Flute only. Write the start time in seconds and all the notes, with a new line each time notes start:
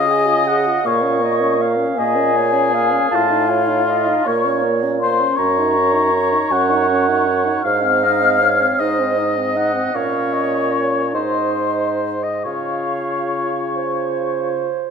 Already playing: D#6
0.86 C#6
1.96 G#5
3.10 F5
4.25 C#6
5.00 C6
5.37 C#6
7.62 F6
8.79 D#6
9.95 C#6
11.14 C6
12.23 D#6
12.44 C#6